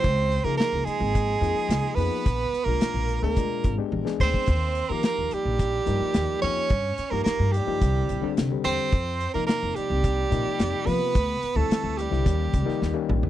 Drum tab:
HH |x-x-x-x-x-x-x-o-|x-x-x-x-x-x-----|x-x-x-x-x-x-x-o-|x-x-x-x-x-x-x-o-|
SD |----o-------oo--|----o--------o--|----o-------o---|--o-o-------o---|
T1 |----------------|------------o---|----------------|----------------|
T2 |----------------|----------------|----------------|----------------|
FT |----------------|----------------|----------------|----------------|
BD |o-------o-------|o-------o-o---oo|o-------o-------|o-------o-------|

HH |x-x-x-x-x-x-x-o-|x-x-x-x-x-x-----|
SD |----o-------o---|----o--o---oo---|
T1 |----------------|----------------|
T2 |----------------|--------------o-|
FT |----------------|---------------o|
BD |o-------o-------|o-------o-o-----|